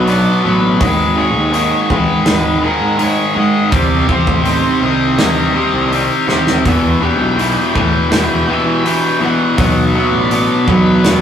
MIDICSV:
0, 0, Header, 1, 6, 480
1, 0, Start_track
1, 0, Tempo, 729927
1, 539, Time_signature, 4, 2, 24, 8
1, 7374, End_track
2, 0, Start_track
2, 0, Title_t, "Lead electric guitar"
2, 0, Program_c, 0, 29
2, 58, Note_on_c, 0, 74, 79
2, 282, Note_off_c, 0, 74, 0
2, 302, Note_on_c, 0, 71, 72
2, 535, Note_off_c, 0, 71, 0
2, 543, Note_on_c, 0, 71, 87
2, 776, Note_off_c, 0, 71, 0
2, 779, Note_on_c, 0, 73, 91
2, 1265, Note_on_c, 0, 71, 76
2, 1273, Note_off_c, 0, 73, 0
2, 1743, Note_off_c, 0, 71, 0
2, 1746, Note_on_c, 0, 70, 77
2, 1984, Note_on_c, 0, 73, 77
2, 1989, Note_off_c, 0, 70, 0
2, 2223, Note_off_c, 0, 73, 0
2, 2226, Note_on_c, 0, 75, 78
2, 2459, Note_off_c, 0, 75, 0
2, 2462, Note_on_c, 0, 74, 83
2, 2683, Note_off_c, 0, 74, 0
2, 2709, Note_on_c, 0, 72, 90
2, 3187, Note_off_c, 0, 72, 0
2, 3189, Note_on_c, 0, 75, 69
2, 3877, Note_off_c, 0, 75, 0
2, 4395, Note_on_c, 0, 76, 91
2, 4624, Note_on_c, 0, 79, 103
2, 4634, Note_off_c, 0, 76, 0
2, 5075, Note_off_c, 0, 79, 0
2, 5118, Note_on_c, 0, 79, 82
2, 5601, Note_on_c, 0, 76, 78
2, 5603, Note_off_c, 0, 79, 0
2, 5828, Note_on_c, 0, 79, 85
2, 5837, Note_off_c, 0, 76, 0
2, 6070, Note_off_c, 0, 79, 0
2, 6073, Note_on_c, 0, 78, 86
2, 6548, Note_on_c, 0, 76, 86
2, 6561, Note_off_c, 0, 78, 0
2, 6668, Note_off_c, 0, 76, 0
2, 6668, Note_on_c, 0, 74, 77
2, 7020, Note_on_c, 0, 71, 65
2, 7035, Note_off_c, 0, 74, 0
2, 7374, Note_off_c, 0, 71, 0
2, 7374, End_track
3, 0, Start_track
3, 0, Title_t, "Clean electric guitar"
3, 0, Program_c, 1, 27
3, 0, Note_on_c, 1, 54, 61
3, 0, Note_on_c, 1, 66, 74
3, 54, Note_on_c, 1, 62, 63
3, 283, Note_off_c, 1, 54, 0
3, 290, Note_on_c, 1, 54, 56
3, 534, Note_off_c, 1, 54, 0
3, 534, Note_on_c, 1, 44, 63
3, 536, Note_off_c, 1, 62, 0
3, 537, Note_off_c, 1, 66, 0
3, 773, Note_on_c, 1, 68, 65
3, 1018, Note_on_c, 1, 63, 68
3, 1259, Note_on_c, 1, 56, 63
3, 1490, Note_off_c, 1, 63, 0
3, 1498, Note_on_c, 1, 63, 58
3, 1729, Note_off_c, 1, 68, 0
3, 1735, Note_off_c, 1, 44, 0
3, 1737, Note_on_c, 1, 68, 72
3, 1962, Note_off_c, 1, 63, 0
3, 1970, Note_on_c, 1, 63, 61
3, 2207, Note_off_c, 1, 56, 0
3, 2215, Note_on_c, 1, 56, 60
3, 2451, Note_on_c, 1, 48, 62
3, 2454, Note_off_c, 1, 63, 0
3, 2456, Note_off_c, 1, 56, 0
3, 2457, Note_off_c, 1, 68, 0
3, 2693, Note_on_c, 1, 67, 63
3, 2937, Note_on_c, 1, 63, 61
3, 3177, Note_on_c, 1, 51, 65
3, 3407, Note_off_c, 1, 63, 0
3, 3415, Note_on_c, 1, 63, 59
3, 3650, Note_off_c, 1, 67, 0
3, 3655, Note_off_c, 1, 48, 0
3, 3658, Note_on_c, 1, 67, 66
3, 3890, Note_off_c, 1, 63, 0
3, 3898, Note_on_c, 1, 63, 59
3, 4130, Note_off_c, 1, 51, 0
3, 4138, Note_on_c, 1, 51, 56
3, 4378, Note_off_c, 1, 51, 0
3, 4378, Note_off_c, 1, 63, 0
3, 4378, Note_off_c, 1, 67, 0
3, 4381, Note_on_c, 1, 40, 65
3, 4618, Note_on_c, 1, 67, 69
3, 4859, Note_on_c, 1, 64, 64
3, 5101, Note_on_c, 1, 52, 65
3, 5334, Note_off_c, 1, 64, 0
3, 5342, Note_on_c, 1, 64, 58
3, 5577, Note_off_c, 1, 67, 0
3, 5580, Note_off_c, 1, 40, 0
3, 5585, Note_on_c, 1, 67, 69
3, 5814, Note_off_c, 1, 64, 0
3, 5822, Note_on_c, 1, 64, 61
3, 6055, Note_off_c, 1, 52, 0
3, 6063, Note_on_c, 1, 52, 58
3, 6301, Note_off_c, 1, 52, 0
3, 6301, Note_off_c, 1, 64, 0
3, 6301, Note_on_c, 1, 47, 67
3, 6302, Note_off_c, 1, 67, 0
3, 6544, Note_on_c, 1, 66, 61
3, 6781, Note_on_c, 1, 62, 67
3, 7019, Note_on_c, 1, 54, 62
3, 7250, Note_off_c, 1, 62, 0
3, 7258, Note_on_c, 1, 62, 61
3, 7374, Note_off_c, 1, 47, 0
3, 7374, Note_off_c, 1, 54, 0
3, 7374, Note_off_c, 1, 62, 0
3, 7374, Note_off_c, 1, 66, 0
3, 7374, End_track
4, 0, Start_track
4, 0, Title_t, "Distorted electric guitar"
4, 0, Program_c, 2, 30
4, 51, Note_on_c, 2, 47, 79
4, 55, Note_on_c, 2, 59, 83
4, 57, Note_on_c, 2, 54, 83
4, 273, Note_off_c, 2, 47, 0
4, 279, Note_off_c, 2, 54, 0
4, 281, Note_on_c, 2, 47, 77
4, 287, Note_off_c, 2, 59, 0
4, 287, Note_on_c, 2, 54, 84
4, 295, Note_on_c, 2, 59, 80
4, 516, Note_off_c, 2, 47, 0
4, 518, Note_off_c, 2, 54, 0
4, 523, Note_off_c, 2, 59, 0
4, 524, Note_on_c, 2, 44, 87
4, 532, Note_on_c, 2, 51, 93
4, 533, Note_on_c, 2, 56, 97
4, 753, Note_off_c, 2, 44, 0
4, 761, Note_off_c, 2, 51, 0
4, 761, Note_on_c, 2, 44, 70
4, 762, Note_off_c, 2, 56, 0
4, 769, Note_on_c, 2, 51, 74
4, 770, Note_on_c, 2, 56, 79
4, 991, Note_off_c, 2, 44, 0
4, 994, Note_off_c, 2, 51, 0
4, 999, Note_on_c, 2, 44, 79
4, 1000, Note_off_c, 2, 56, 0
4, 1002, Note_on_c, 2, 51, 81
4, 1008, Note_on_c, 2, 56, 84
4, 1239, Note_off_c, 2, 44, 0
4, 1245, Note_off_c, 2, 51, 0
4, 1246, Note_off_c, 2, 56, 0
4, 1247, Note_on_c, 2, 44, 65
4, 1253, Note_on_c, 2, 51, 79
4, 1254, Note_on_c, 2, 56, 81
4, 1476, Note_off_c, 2, 44, 0
4, 1483, Note_off_c, 2, 56, 0
4, 1484, Note_off_c, 2, 51, 0
4, 1484, Note_on_c, 2, 44, 84
4, 1490, Note_on_c, 2, 56, 87
4, 1492, Note_on_c, 2, 51, 95
4, 1713, Note_off_c, 2, 44, 0
4, 1718, Note_off_c, 2, 51, 0
4, 1721, Note_on_c, 2, 44, 83
4, 1722, Note_off_c, 2, 56, 0
4, 1726, Note_on_c, 2, 51, 89
4, 1730, Note_on_c, 2, 56, 90
4, 1941, Note_off_c, 2, 44, 0
4, 1946, Note_off_c, 2, 51, 0
4, 1949, Note_on_c, 2, 44, 83
4, 1952, Note_off_c, 2, 56, 0
4, 1954, Note_on_c, 2, 51, 80
4, 1960, Note_on_c, 2, 56, 85
4, 2189, Note_off_c, 2, 44, 0
4, 2194, Note_off_c, 2, 51, 0
4, 2197, Note_on_c, 2, 44, 74
4, 2199, Note_off_c, 2, 56, 0
4, 2202, Note_on_c, 2, 51, 78
4, 2207, Note_on_c, 2, 56, 81
4, 2433, Note_off_c, 2, 44, 0
4, 2433, Note_off_c, 2, 51, 0
4, 2435, Note_off_c, 2, 56, 0
4, 2436, Note_on_c, 2, 48, 82
4, 2438, Note_on_c, 2, 55, 88
4, 2445, Note_on_c, 2, 60, 95
4, 2664, Note_off_c, 2, 48, 0
4, 2672, Note_on_c, 2, 48, 74
4, 2673, Note_off_c, 2, 60, 0
4, 2677, Note_off_c, 2, 55, 0
4, 2680, Note_on_c, 2, 55, 80
4, 2681, Note_on_c, 2, 60, 83
4, 2909, Note_off_c, 2, 48, 0
4, 2915, Note_off_c, 2, 60, 0
4, 2917, Note_on_c, 2, 48, 78
4, 2919, Note_off_c, 2, 55, 0
4, 2922, Note_on_c, 2, 55, 85
4, 2923, Note_on_c, 2, 60, 93
4, 3151, Note_off_c, 2, 48, 0
4, 3159, Note_on_c, 2, 48, 67
4, 3160, Note_off_c, 2, 55, 0
4, 3163, Note_on_c, 2, 55, 67
4, 3164, Note_off_c, 2, 60, 0
4, 3172, Note_on_c, 2, 60, 80
4, 3393, Note_off_c, 2, 48, 0
4, 3398, Note_off_c, 2, 55, 0
4, 3401, Note_on_c, 2, 48, 84
4, 3402, Note_off_c, 2, 60, 0
4, 3406, Note_on_c, 2, 55, 82
4, 3410, Note_on_c, 2, 60, 78
4, 3632, Note_off_c, 2, 48, 0
4, 3635, Note_off_c, 2, 55, 0
4, 3639, Note_on_c, 2, 48, 76
4, 3642, Note_off_c, 2, 60, 0
4, 3643, Note_on_c, 2, 55, 87
4, 3650, Note_on_c, 2, 60, 87
4, 3875, Note_off_c, 2, 48, 0
4, 3883, Note_on_c, 2, 48, 80
4, 3885, Note_off_c, 2, 55, 0
4, 3890, Note_off_c, 2, 60, 0
4, 3893, Note_on_c, 2, 55, 77
4, 3898, Note_on_c, 2, 60, 92
4, 4115, Note_off_c, 2, 48, 0
4, 4123, Note_off_c, 2, 55, 0
4, 4123, Note_on_c, 2, 48, 82
4, 4128, Note_off_c, 2, 60, 0
4, 4131, Note_on_c, 2, 55, 76
4, 4136, Note_on_c, 2, 60, 80
4, 4356, Note_off_c, 2, 48, 0
4, 4360, Note_off_c, 2, 55, 0
4, 4363, Note_off_c, 2, 60, 0
4, 4374, Note_on_c, 2, 40, 79
4, 4379, Note_on_c, 2, 47, 79
4, 4385, Note_on_c, 2, 52, 88
4, 4599, Note_off_c, 2, 40, 0
4, 4601, Note_off_c, 2, 47, 0
4, 4607, Note_on_c, 2, 40, 78
4, 4609, Note_off_c, 2, 52, 0
4, 4609, Note_on_c, 2, 47, 75
4, 4616, Note_on_c, 2, 52, 70
4, 4839, Note_off_c, 2, 40, 0
4, 4846, Note_off_c, 2, 52, 0
4, 4847, Note_on_c, 2, 40, 87
4, 4848, Note_off_c, 2, 47, 0
4, 4854, Note_on_c, 2, 52, 84
4, 4856, Note_on_c, 2, 47, 87
4, 5083, Note_off_c, 2, 40, 0
4, 5087, Note_off_c, 2, 47, 0
4, 5090, Note_off_c, 2, 52, 0
4, 5091, Note_on_c, 2, 40, 69
4, 5095, Note_on_c, 2, 47, 79
4, 5098, Note_on_c, 2, 52, 77
4, 5325, Note_off_c, 2, 40, 0
4, 5326, Note_off_c, 2, 47, 0
4, 5333, Note_on_c, 2, 40, 73
4, 5334, Note_on_c, 2, 47, 91
4, 5336, Note_off_c, 2, 52, 0
4, 5344, Note_on_c, 2, 52, 87
4, 5570, Note_off_c, 2, 40, 0
4, 5571, Note_off_c, 2, 47, 0
4, 5576, Note_off_c, 2, 52, 0
4, 5578, Note_on_c, 2, 40, 77
4, 5578, Note_on_c, 2, 47, 77
4, 5584, Note_on_c, 2, 52, 87
4, 5805, Note_off_c, 2, 40, 0
4, 5809, Note_off_c, 2, 47, 0
4, 5809, Note_off_c, 2, 52, 0
4, 5813, Note_on_c, 2, 40, 81
4, 5816, Note_on_c, 2, 47, 88
4, 5817, Note_on_c, 2, 52, 80
4, 6038, Note_off_c, 2, 40, 0
4, 6041, Note_off_c, 2, 47, 0
4, 6046, Note_on_c, 2, 40, 67
4, 6049, Note_on_c, 2, 47, 84
4, 6052, Note_off_c, 2, 52, 0
4, 6060, Note_on_c, 2, 52, 79
4, 6279, Note_off_c, 2, 40, 0
4, 6280, Note_off_c, 2, 47, 0
4, 6285, Note_off_c, 2, 52, 0
4, 6292, Note_on_c, 2, 47, 79
4, 6296, Note_on_c, 2, 54, 89
4, 6300, Note_on_c, 2, 59, 86
4, 6530, Note_off_c, 2, 47, 0
4, 6534, Note_off_c, 2, 54, 0
4, 6538, Note_on_c, 2, 47, 69
4, 6541, Note_on_c, 2, 54, 77
4, 6542, Note_off_c, 2, 59, 0
4, 6544, Note_on_c, 2, 59, 82
4, 6771, Note_off_c, 2, 47, 0
4, 6777, Note_off_c, 2, 54, 0
4, 6779, Note_on_c, 2, 47, 93
4, 6784, Note_on_c, 2, 54, 91
4, 6785, Note_off_c, 2, 59, 0
4, 6788, Note_on_c, 2, 59, 94
4, 7011, Note_off_c, 2, 47, 0
4, 7018, Note_off_c, 2, 54, 0
4, 7019, Note_on_c, 2, 47, 72
4, 7026, Note_on_c, 2, 54, 77
4, 7029, Note_off_c, 2, 59, 0
4, 7032, Note_on_c, 2, 59, 71
4, 7248, Note_off_c, 2, 47, 0
4, 7255, Note_off_c, 2, 54, 0
4, 7255, Note_on_c, 2, 47, 76
4, 7260, Note_off_c, 2, 59, 0
4, 7263, Note_on_c, 2, 54, 86
4, 7268, Note_on_c, 2, 59, 86
4, 7374, Note_off_c, 2, 47, 0
4, 7374, Note_off_c, 2, 54, 0
4, 7374, Note_off_c, 2, 59, 0
4, 7374, End_track
5, 0, Start_track
5, 0, Title_t, "Picked electric bass"
5, 0, Program_c, 3, 34
5, 0, Note_on_c, 3, 35, 81
5, 160, Note_off_c, 3, 35, 0
5, 298, Note_on_c, 3, 33, 73
5, 523, Note_off_c, 3, 33, 0
5, 530, Note_on_c, 3, 32, 83
5, 900, Note_off_c, 3, 32, 0
5, 900, Note_on_c, 3, 39, 81
5, 1124, Note_off_c, 3, 39, 0
5, 1250, Note_on_c, 3, 37, 83
5, 1366, Note_off_c, 3, 37, 0
5, 1493, Note_on_c, 3, 32, 76
5, 1719, Note_off_c, 3, 32, 0
5, 1850, Note_on_c, 3, 44, 76
5, 2078, Note_off_c, 3, 44, 0
5, 2212, Note_on_c, 3, 44, 72
5, 2327, Note_off_c, 3, 44, 0
5, 2448, Note_on_c, 3, 36, 79
5, 2677, Note_off_c, 3, 36, 0
5, 2807, Note_on_c, 3, 33, 86
5, 3036, Note_off_c, 3, 33, 0
5, 3171, Note_on_c, 3, 36, 84
5, 3398, Note_off_c, 3, 36, 0
5, 3408, Note_on_c, 3, 43, 89
5, 3637, Note_off_c, 3, 43, 0
5, 3766, Note_on_c, 3, 36, 78
5, 3996, Note_off_c, 3, 36, 0
5, 4126, Note_on_c, 3, 48, 70
5, 4356, Note_off_c, 3, 48, 0
5, 4372, Note_on_c, 3, 40, 86
5, 4730, Note_off_c, 3, 40, 0
5, 4730, Note_on_c, 3, 35, 82
5, 4958, Note_off_c, 3, 35, 0
5, 5096, Note_on_c, 3, 45, 83
5, 5209, Note_off_c, 3, 45, 0
5, 5333, Note_on_c, 3, 40, 80
5, 5560, Note_off_c, 3, 40, 0
5, 5687, Note_on_c, 3, 52, 69
5, 5917, Note_off_c, 3, 52, 0
5, 6058, Note_on_c, 3, 52, 73
5, 6171, Note_off_c, 3, 52, 0
5, 6302, Note_on_c, 3, 35, 85
5, 6525, Note_off_c, 3, 35, 0
5, 6648, Note_on_c, 3, 33, 79
5, 6878, Note_off_c, 3, 33, 0
5, 7017, Note_on_c, 3, 35, 85
5, 7243, Note_off_c, 3, 35, 0
5, 7257, Note_on_c, 3, 42, 92
5, 7374, Note_off_c, 3, 42, 0
5, 7374, End_track
6, 0, Start_track
6, 0, Title_t, "Drums"
6, 50, Note_on_c, 9, 46, 43
6, 116, Note_off_c, 9, 46, 0
6, 530, Note_on_c, 9, 46, 45
6, 531, Note_on_c, 9, 36, 97
6, 596, Note_off_c, 9, 46, 0
6, 597, Note_off_c, 9, 36, 0
6, 1011, Note_on_c, 9, 46, 45
6, 1077, Note_off_c, 9, 46, 0
6, 1250, Note_on_c, 9, 36, 65
6, 1316, Note_off_c, 9, 36, 0
6, 1485, Note_on_c, 9, 46, 50
6, 1486, Note_on_c, 9, 38, 100
6, 1551, Note_off_c, 9, 46, 0
6, 1552, Note_off_c, 9, 38, 0
6, 1967, Note_on_c, 9, 46, 46
6, 2033, Note_off_c, 9, 46, 0
6, 2446, Note_on_c, 9, 46, 46
6, 2448, Note_on_c, 9, 36, 102
6, 2512, Note_off_c, 9, 46, 0
6, 2514, Note_off_c, 9, 36, 0
6, 2689, Note_on_c, 9, 36, 66
6, 2755, Note_off_c, 9, 36, 0
6, 2809, Note_on_c, 9, 36, 71
6, 2875, Note_off_c, 9, 36, 0
6, 2930, Note_on_c, 9, 46, 45
6, 2995, Note_off_c, 9, 46, 0
6, 3410, Note_on_c, 9, 46, 45
6, 3411, Note_on_c, 9, 38, 97
6, 3476, Note_off_c, 9, 38, 0
6, 3476, Note_off_c, 9, 46, 0
6, 3897, Note_on_c, 9, 46, 40
6, 3963, Note_off_c, 9, 46, 0
6, 4135, Note_on_c, 9, 38, 52
6, 4201, Note_off_c, 9, 38, 0
6, 4255, Note_on_c, 9, 38, 62
6, 4321, Note_off_c, 9, 38, 0
6, 4376, Note_on_c, 9, 46, 44
6, 4377, Note_on_c, 9, 36, 99
6, 4441, Note_off_c, 9, 46, 0
6, 4442, Note_off_c, 9, 36, 0
6, 4861, Note_on_c, 9, 46, 41
6, 4927, Note_off_c, 9, 46, 0
6, 5100, Note_on_c, 9, 36, 70
6, 5166, Note_off_c, 9, 36, 0
6, 5338, Note_on_c, 9, 46, 48
6, 5339, Note_on_c, 9, 38, 98
6, 5404, Note_off_c, 9, 46, 0
6, 5405, Note_off_c, 9, 38, 0
6, 5825, Note_on_c, 9, 46, 45
6, 5890, Note_off_c, 9, 46, 0
6, 6301, Note_on_c, 9, 36, 96
6, 6302, Note_on_c, 9, 46, 49
6, 6367, Note_off_c, 9, 36, 0
6, 6368, Note_off_c, 9, 46, 0
6, 6781, Note_on_c, 9, 46, 45
6, 6846, Note_off_c, 9, 46, 0
6, 7021, Note_on_c, 9, 36, 67
6, 7086, Note_off_c, 9, 36, 0
6, 7264, Note_on_c, 9, 38, 103
6, 7264, Note_on_c, 9, 46, 47
6, 7329, Note_off_c, 9, 46, 0
6, 7330, Note_off_c, 9, 38, 0
6, 7374, End_track
0, 0, End_of_file